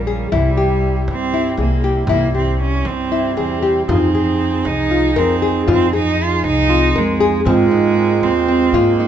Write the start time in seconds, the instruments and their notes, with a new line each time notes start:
Already playing: upright bass A#1, harmonium C#3 F3 A#3, cello G3
0.07 nylon-string guitar G#4, frame drum
0.32 upright bass C2, harmonium C3 G3 E4, cello G3, nylon-string guitar E4, frame drum
0.57 nylon-string guitar G4, frame drum
1.08 upright bass G2, cello C4, frame drum
1.34 nylon-string guitar E4
1.58 upright bass C2, cello A#3, nylon-string guitar G#4, frame drum
1.82 nylon-string guitar G4, frame drum
2.07 upright bass C2, cello A#3, nylon-string guitar E4, frame drum
2.35 cello C4, nylon-string guitar G4
2.60 cello C#4, frame drum
2.85 upright bass G2, cello C4, frame drum
3.12 nylon-string guitar E4
3.37 upright bass E2, cello C4, nylon-string guitar G#4, frame drum
3.62 nylon-string guitar G4, frame drum
3.88 upright bass F2, harmonium F3 D#4 G#4, cello C4, vibraphone D#4, nylon-string guitar F4, frame drum
4.14 nylon-string guitar G#4, frame drum
4.65 upright bass C2, cello D#4, frame drum
4.91 nylon-string guitar F4
5.16 upright bass F2, cello C4, nylon-string guitar A#4, frame drum
5.42 nylon-string guitar G#4, frame drum
5.67 upright bass F2, cello C4, nylon-string guitar F4, frame drum
5.93 cello D#4, nylon-string guitar G#4, frame drum
6.23 cello F4
6.44 upright bass C2, cello D#4, frame drum
6.70 vibraphone C4, nylon-string guitar F4
6.95 upright bass F2, cello G#3, nylon-string guitar A#4, frame drum
7.20 nylon-string guitar G#4, frame drum
7.45 upright bass G#2, harmonium G#3 A#3 C4, cello G#3, nylon-string guitar C4, vibraphone F4, frame drum
7.71 nylon-string guitar D#4, frame drum
8.22 upright bass D#2, cello C4, frame drum
8.48 nylon-string guitar C4
8.73 upright bass G#2, cello A#3, nylon-string guitar F4, frame drum
9.00 nylon-string guitar D#4, frame drum